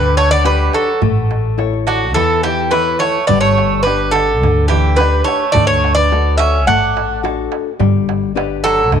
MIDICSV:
0, 0, Header, 1, 6, 480
1, 0, Start_track
1, 0, Tempo, 564972
1, 866, Time_signature, 4, 2, 24, 8
1, 7646, End_track
2, 0, Start_track
2, 0, Title_t, "Bouzouki"
2, 0, Program_c, 0, 25
2, 0, Note_on_c, 0, 71, 95
2, 142, Note_off_c, 0, 71, 0
2, 146, Note_on_c, 0, 73, 90
2, 260, Note_off_c, 0, 73, 0
2, 263, Note_on_c, 0, 74, 107
2, 375, Note_off_c, 0, 74, 0
2, 387, Note_on_c, 0, 71, 78
2, 609, Note_off_c, 0, 71, 0
2, 632, Note_on_c, 0, 69, 66
2, 853, Note_off_c, 0, 69, 0
2, 1593, Note_on_c, 0, 66, 69
2, 1818, Note_off_c, 0, 66, 0
2, 1821, Note_on_c, 0, 69, 82
2, 2050, Note_off_c, 0, 69, 0
2, 2068, Note_on_c, 0, 67, 75
2, 2294, Note_off_c, 0, 67, 0
2, 2304, Note_on_c, 0, 71, 79
2, 2543, Note_off_c, 0, 71, 0
2, 2546, Note_on_c, 0, 73, 83
2, 2773, Note_off_c, 0, 73, 0
2, 2781, Note_on_c, 0, 74, 88
2, 2891, Note_off_c, 0, 74, 0
2, 2895, Note_on_c, 0, 73, 85
2, 3239, Note_off_c, 0, 73, 0
2, 3251, Note_on_c, 0, 71, 77
2, 3486, Note_off_c, 0, 71, 0
2, 3495, Note_on_c, 0, 69, 81
2, 3951, Note_off_c, 0, 69, 0
2, 3977, Note_on_c, 0, 67, 75
2, 4220, Note_on_c, 0, 71, 80
2, 4233, Note_off_c, 0, 67, 0
2, 4450, Note_off_c, 0, 71, 0
2, 4455, Note_on_c, 0, 73, 80
2, 4688, Note_off_c, 0, 73, 0
2, 4691, Note_on_c, 0, 74, 85
2, 4814, Note_off_c, 0, 74, 0
2, 4817, Note_on_c, 0, 73, 88
2, 5049, Note_off_c, 0, 73, 0
2, 5053, Note_on_c, 0, 74, 101
2, 5396, Note_off_c, 0, 74, 0
2, 5417, Note_on_c, 0, 76, 87
2, 5646, Note_off_c, 0, 76, 0
2, 5669, Note_on_c, 0, 78, 89
2, 6114, Note_off_c, 0, 78, 0
2, 7338, Note_on_c, 0, 69, 86
2, 7561, Note_off_c, 0, 69, 0
2, 7646, End_track
3, 0, Start_track
3, 0, Title_t, "Nylon-string guitar"
3, 0, Program_c, 1, 24
3, 0, Note_on_c, 1, 50, 70
3, 368, Note_off_c, 1, 50, 0
3, 377, Note_on_c, 1, 62, 47
3, 381, Note_on_c, 1, 67, 46
3, 383, Note_on_c, 1, 71, 56
3, 766, Note_off_c, 1, 62, 0
3, 767, Note_off_c, 1, 67, 0
3, 769, Note_off_c, 1, 71, 0
3, 863, Note_on_c, 1, 57, 73
3, 1332, Note_off_c, 1, 57, 0
3, 1339, Note_on_c, 1, 64, 49
3, 1344, Note_on_c, 1, 69, 44
3, 1350, Note_on_c, 1, 73, 48
3, 1729, Note_off_c, 1, 64, 0
3, 1731, Note_off_c, 1, 69, 0
3, 1736, Note_off_c, 1, 73, 0
3, 1830, Note_on_c, 1, 52, 65
3, 2298, Note_off_c, 1, 52, 0
3, 2314, Note_on_c, 1, 64, 44
3, 2317, Note_on_c, 1, 69, 47
3, 2321, Note_on_c, 1, 73, 55
3, 2699, Note_off_c, 1, 64, 0
3, 2700, Note_off_c, 1, 69, 0
3, 2703, Note_off_c, 1, 73, 0
3, 2798, Note_on_c, 1, 55, 72
3, 3262, Note_off_c, 1, 55, 0
3, 3279, Note_on_c, 1, 62, 45
3, 3281, Note_on_c, 1, 67, 41
3, 3285, Note_on_c, 1, 71, 49
3, 3662, Note_off_c, 1, 62, 0
3, 3662, Note_off_c, 1, 67, 0
3, 3664, Note_off_c, 1, 71, 0
3, 3767, Note_on_c, 1, 50, 66
3, 4227, Note_off_c, 1, 50, 0
3, 4234, Note_on_c, 1, 62, 48
3, 4241, Note_on_c, 1, 67, 46
3, 4247, Note_on_c, 1, 71, 55
3, 4618, Note_off_c, 1, 62, 0
3, 4622, Note_off_c, 1, 67, 0
3, 4625, Note_off_c, 1, 71, 0
3, 4713, Note_on_c, 1, 50, 72
3, 5178, Note_off_c, 1, 50, 0
3, 5195, Note_on_c, 1, 62, 44
3, 5199, Note_on_c, 1, 66, 46
3, 5200, Note_on_c, 1, 69, 56
3, 5578, Note_off_c, 1, 62, 0
3, 5578, Note_off_c, 1, 66, 0
3, 5580, Note_off_c, 1, 69, 0
3, 5670, Note_on_c, 1, 57, 64
3, 6134, Note_off_c, 1, 57, 0
3, 6144, Note_on_c, 1, 62, 44
3, 6145, Note_on_c, 1, 66, 45
3, 6150, Note_on_c, 1, 69, 56
3, 6528, Note_off_c, 1, 62, 0
3, 6528, Note_off_c, 1, 66, 0
3, 6531, Note_off_c, 1, 69, 0
3, 6622, Note_on_c, 1, 55, 70
3, 7086, Note_off_c, 1, 55, 0
3, 7097, Note_on_c, 1, 62, 50
3, 7101, Note_on_c, 1, 67, 44
3, 7103, Note_on_c, 1, 71, 49
3, 7480, Note_off_c, 1, 62, 0
3, 7482, Note_off_c, 1, 67, 0
3, 7484, Note_off_c, 1, 71, 0
3, 7585, Note_on_c, 1, 50, 65
3, 7646, Note_off_c, 1, 50, 0
3, 7646, End_track
4, 0, Start_track
4, 0, Title_t, "Bouzouki"
4, 0, Program_c, 2, 25
4, 0, Note_on_c, 2, 55, 75
4, 123, Note_off_c, 2, 55, 0
4, 151, Note_on_c, 2, 57, 80
4, 258, Note_off_c, 2, 57, 0
4, 276, Note_on_c, 2, 59, 79
4, 382, Note_off_c, 2, 59, 0
4, 386, Note_on_c, 2, 55, 80
4, 609, Note_off_c, 2, 55, 0
4, 632, Note_on_c, 2, 54, 56
4, 853, Note_off_c, 2, 54, 0
4, 1586, Note_on_c, 2, 50, 64
4, 1812, Note_off_c, 2, 50, 0
4, 1831, Note_on_c, 2, 52, 66
4, 2055, Note_off_c, 2, 52, 0
4, 2071, Note_on_c, 2, 52, 60
4, 2290, Note_off_c, 2, 52, 0
4, 2300, Note_on_c, 2, 52, 64
4, 2530, Note_off_c, 2, 52, 0
4, 2540, Note_on_c, 2, 57, 64
4, 2770, Note_off_c, 2, 57, 0
4, 2778, Note_on_c, 2, 59, 74
4, 2888, Note_off_c, 2, 59, 0
4, 2892, Note_on_c, 2, 57, 71
4, 3237, Note_off_c, 2, 57, 0
4, 3258, Note_on_c, 2, 55, 72
4, 3489, Note_off_c, 2, 55, 0
4, 3503, Note_on_c, 2, 50, 75
4, 3955, Note_off_c, 2, 50, 0
4, 3987, Note_on_c, 2, 52, 70
4, 4214, Note_off_c, 2, 52, 0
4, 4217, Note_on_c, 2, 55, 78
4, 4448, Note_off_c, 2, 55, 0
4, 4456, Note_on_c, 2, 57, 65
4, 4687, Note_off_c, 2, 57, 0
4, 4702, Note_on_c, 2, 57, 85
4, 4805, Note_off_c, 2, 57, 0
4, 4816, Note_on_c, 2, 57, 78
4, 5047, Note_off_c, 2, 57, 0
4, 5064, Note_on_c, 2, 59, 71
4, 5402, Note_off_c, 2, 59, 0
4, 5431, Note_on_c, 2, 61, 88
4, 5654, Note_off_c, 2, 61, 0
4, 5676, Note_on_c, 2, 62, 73
4, 6118, Note_off_c, 2, 62, 0
4, 7348, Note_on_c, 2, 54, 80
4, 7566, Note_off_c, 2, 54, 0
4, 7646, End_track
5, 0, Start_track
5, 0, Title_t, "Upright bass"
5, 0, Program_c, 3, 32
5, 0, Note_on_c, 3, 38, 97
5, 572, Note_off_c, 3, 38, 0
5, 866, Note_on_c, 3, 33, 87
5, 1828, Note_off_c, 3, 33, 0
5, 1828, Note_on_c, 3, 40, 91
5, 2503, Note_off_c, 3, 40, 0
5, 2795, Note_on_c, 3, 31, 84
5, 3749, Note_off_c, 3, 31, 0
5, 3749, Note_on_c, 3, 38, 96
5, 4423, Note_off_c, 3, 38, 0
5, 4712, Note_on_c, 3, 38, 88
5, 5668, Note_off_c, 3, 38, 0
5, 5668, Note_on_c, 3, 33, 96
5, 6337, Note_off_c, 3, 33, 0
5, 6624, Note_on_c, 3, 31, 83
5, 7572, Note_off_c, 3, 31, 0
5, 7572, Note_on_c, 3, 38, 91
5, 7646, Note_off_c, 3, 38, 0
5, 7646, End_track
6, 0, Start_track
6, 0, Title_t, "Darbuka"
6, 28, Note_on_c, 9, 63, 22
6, 113, Note_off_c, 9, 63, 0
6, 145, Note_on_c, 9, 63, 73
6, 230, Note_off_c, 9, 63, 0
6, 260, Note_on_c, 9, 63, 24
6, 345, Note_off_c, 9, 63, 0
6, 378, Note_on_c, 9, 63, 73
6, 463, Note_off_c, 9, 63, 0
6, 624, Note_on_c, 9, 63, 68
6, 709, Note_off_c, 9, 63, 0
6, 866, Note_on_c, 9, 64, 80
6, 951, Note_off_c, 9, 64, 0
6, 989, Note_on_c, 9, 63, 24
6, 1074, Note_off_c, 9, 63, 0
6, 1111, Note_on_c, 9, 63, 61
6, 1196, Note_off_c, 9, 63, 0
6, 1234, Note_on_c, 9, 63, 27
6, 1319, Note_off_c, 9, 63, 0
6, 1348, Note_on_c, 9, 63, 64
6, 1433, Note_off_c, 9, 63, 0
6, 1473, Note_on_c, 9, 63, 27
6, 1558, Note_off_c, 9, 63, 0
6, 1591, Note_on_c, 9, 63, 66
6, 1676, Note_off_c, 9, 63, 0
6, 1719, Note_on_c, 9, 63, 27
6, 1804, Note_off_c, 9, 63, 0
6, 1836, Note_on_c, 9, 63, 58
6, 1921, Note_off_c, 9, 63, 0
6, 1959, Note_on_c, 9, 63, 21
6, 2044, Note_off_c, 9, 63, 0
6, 2077, Note_on_c, 9, 63, 71
6, 2162, Note_off_c, 9, 63, 0
6, 2320, Note_on_c, 9, 63, 67
6, 2405, Note_off_c, 9, 63, 0
6, 2444, Note_on_c, 9, 63, 26
6, 2529, Note_off_c, 9, 63, 0
6, 2559, Note_on_c, 9, 63, 70
6, 2644, Note_off_c, 9, 63, 0
6, 2682, Note_on_c, 9, 63, 26
6, 2767, Note_off_c, 9, 63, 0
6, 2800, Note_on_c, 9, 64, 90
6, 2885, Note_off_c, 9, 64, 0
6, 3039, Note_on_c, 9, 63, 67
6, 3124, Note_off_c, 9, 63, 0
6, 3168, Note_on_c, 9, 63, 27
6, 3253, Note_off_c, 9, 63, 0
6, 3283, Note_on_c, 9, 63, 69
6, 3368, Note_off_c, 9, 63, 0
6, 3528, Note_on_c, 9, 63, 73
6, 3613, Note_off_c, 9, 63, 0
6, 3767, Note_on_c, 9, 63, 69
6, 3767, Note_on_c, 9, 64, 65
6, 3852, Note_off_c, 9, 63, 0
6, 3852, Note_off_c, 9, 64, 0
6, 3884, Note_on_c, 9, 63, 26
6, 3969, Note_off_c, 9, 63, 0
6, 4001, Note_on_c, 9, 63, 71
6, 4086, Note_off_c, 9, 63, 0
6, 4128, Note_on_c, 9, 63, 27
6, 4213, Note_off_c, 9, 63, 0
6, 4248, Note_on_c, 9, 63, 77
6, 4333, Note_off_c, 9, 63, 0
6, 4485, Note_on_c, 9, 63, 73
6, 4570, Note_off_c, 9, 63, 0
6, 4726, Note_on_c, 9, 64, 92
6, 4811, Note_off_c, 9, 64, 0
6, 4962, Note_on_c, 9, 63, 73
6, 5047, Note_off_c, 9, 63, 0
6, 5201, Note_on_c, 9, 63, 73
6, 5286, Note_off_c, 9, 63, 0
6, 5439, Note_on_c, 9, 63, 75
6, 5524, Note_off_c, 9, 63, 0
6, 5678, Note_on_c, 9, 63, 67
6, 5678, Note_on_c, 9, 64, 64
6, 5763, Note_off_c, 9, 63, 0
6, 5763, Note_off_c, 9, 64, 0
6, 5801, Note_on_c, 9, 63, 26
6, 5886, Note_off_c, 9, 63, 0
6, 5920, Note_on_c, 9, 63, 82
6, 6005, Note_off_c, 9, 63, 0
6, 6043, Note_on_c, 9, 63, 28
6, 6128, Note_off_c, 9, 63, 0
6, 6157, Note_on_c, 9, 63, 76
6, 6242, Note_off_c, 9, 63, 0
6, 6387, Note_on_c, 9, 63, 75
6, 6472, Note_off_c, 9, 63, 0
6, 6627, Note_on_c, 9, 64, 96
6, 6712, Note_off_c, 9, 64, 0
6, 6872, Note_on_c, 9, 63, 74
6, 6957, Note_off_c, 9, 63, 0
6, 6995, Note_on_c, 9, 63, 28
6, 7080, Note_off_c, 9, 63, 0
6, 7114, Note_on_c, 9, 63, 85
6, 7199, Note_off_c, 9, 63, 0
6, 7342, Note_on_c, 9, 63, 78
6, 7427, Note_off_c, 9, 63, 0
6, 7581, Note_on_c, 9, 63, 82
6, 7581, Note_on_c, 9, 64, 66
6, 7646, Note_off_c, 9, 63, 0
6, 7646, Note_off_c, 9, 64, 0
6, 7646, End_track
0, 0, End_of_file